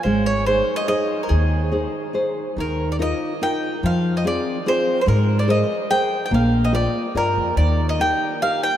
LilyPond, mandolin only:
\new Staff \with { instrumentName = "Mandolin" } { \time 3/4 \key aes \major \tempo 4 = 144 c''8 des''8 c''8. ees''16 \tuplet 3/2 { ees''4~ ees''16 bes'16 } | aes'2 r4 | \key ees \major bes'8. d''16 ees''4 g''4 | f''8. ees''16 d''4 \tuplet 3/2 { c''4~ c''16 c''16 } |
bes'8. d''16 ees''4 \tuplet 3/2 { g''4~ g''16 g''16 } | f''8. ees''16 d''4 bes'4 | d''8. ees''16 g''4 f''8 g''8 | }